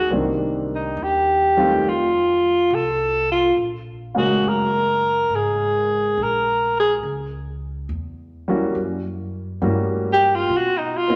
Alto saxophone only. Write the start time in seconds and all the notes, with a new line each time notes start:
Already playing: F#4
0.75 D#4
1.03 G4
1.89 F4
2.74 A4
3.32 F4
4.18 F#4
4.48 A#4
5.35 G#4
6.23 A#4
6.80 G#4
10.13 G4
10.35 F4
10.57 F#4
10.78 D#4
10.97 F4